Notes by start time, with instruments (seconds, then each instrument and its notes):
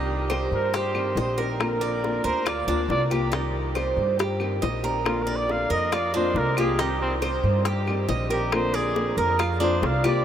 Already playing: upright bass C2, nylon-string guitar C3 D#3 G3 C4 G4, cuban tres D#4, trumpet G4
0.30 nylon-string guitar D#3 G3 C4 G4, cuban tres C5, high bongo, claves
0.51 upright bass G2, trumpet A#4, high bongo
0.74 cuban tres G4, trumpet C5, muted nylon-string guitar stroke, high bongo
0.95 nylon-string guitar D#3 G3 C4 G4, high bongo, claves
1.16 upright bass A#1, nylon-string guitar D#3 G3 C4 G4, cuban tres D#5, high bongo, low bongo
1.20 trumpet C5
1.38 nylon-string guitar D#3 G3 C4 G4, cuban tres A#4, high bongo
1.60 nylon-string guitar D3 A#3 C4 F4, trumpet A#4, high bongo, claves
1.81 cuban tres D5
2.03 nylon-string guitar D3 A#3 C4 F4, high bongo
2.24 upright bass D2, cuban tres A#4, trumpet C5, high bongo
2.46 cuban tres F4, trumpet D5, muted nylon-string guitar stroke, high bongo, claves
2.67 upright bass D2, nylon-string guitar A#3 C4 F4, cuban tres D4, high bongo
2.88 upright bass C2, nylon-string guitar D3 A#3 C4 F4, trumpet D5, high bongo, low bongo
3.10 nylon-string guitar A#3 C4 F4, cuban tres G4, high bongo, claves
3.31 nylon-string guitar C3 D#3 G3 C4 G4, cuban tres D#4, high bongo
3.75 nylon-string guitar D#3 G3 C4 G4, cuban tres C5, high bongo, claves
3.97 upright bass G2, high bongo
4.19 cuban tres G4, muted nylon-string guitar stroke, high bongo
4.40 nylon-string guitar D#3 G3 C4 G4, high bongo, claves
4.61 upright bass A#1, nylon-string guitar D#3 G3 C4 G4, cuban tres D#5, high bongo, low bongo
4.83 nylon-string guitar D#3 G3 C4 G4, cuban tres A#4, high bongo
5.05 nylon-string guitar D3 A#3 C4 F4, trumpet F4, high bongo, claves
5.23 trumpet A#4
5.27 cuban tres D5
5.36 trumpet D5
5.48 nylon-string guitar D3 A#3 C4 F4, trumpet F5, high bongo
5.70 upright bass F2, cuban tres A#4, trumpet D#5, high bongo
5.92 cuban tres F4, trumpet D5, muted nylon-string guitar stroke, high bongo, claves
6.14 nylon-string guitar A#3 C4 F4, cuban tres D4, trumpet C5, high bongo
6.34 upright bass C2, nylon-string guitar D3 A#3 C4 F4, trumpet A#4, high bongo, low bongo
6.57 nylon-string guitar A#3 C4 F4, cuban tres G4, trumpet G#4, high bongo, claves
6.79 nylon-string guitar C3 D#3 G3 C4 G4, cuban tres D#4, trumpet G4, high bongo
7.02 trumpet C4
7.22 nylon-string guitar D#3 G3 C4 G4, cuban tres C5, high bongo, claves
7.43 upright bass G2, high bongo
7.65 cuban tres G4, muted nylon-string guitar stroke, high bongo
7.87 nylon-string guitar D#3 G3 C4 G4, high bongo, claves
8.08 upright bass A#1, nylon-string guitar D#3 G3 C4 G4, cuban tres D#5, high bongo, low bongo
8.30 nylon-string guitar D#3 G3 C4 G4, trumpet G4, cuban tres A#4, high bongo
8.52 nylon-string guitar D3 A#3 C4 F4, trumpet C5, high bongo, claves
8.74 trumpet G#4, cuban tres D5
8.95 nylon-string guitar D3 A#3 C4 F4, high bongo
9.17 upright bass F2, cuban tres A#4, trumpet A#4, high bongo
9.39 cuban tres F4, muted nylon-string guitar stroke, high bongo, claves
9.60 nylon-string guitar A#3 C4 F4, cuban tres D4, trumpet C5, high bongo
9.82 upright bass C2, nylon-string guitar D3 A#3 C4 F4, trumpet F5, high bongo
10.03 nylon-string guitar A#3 C4 F4, cuban tres G4, trumpet D5, low bongo, claves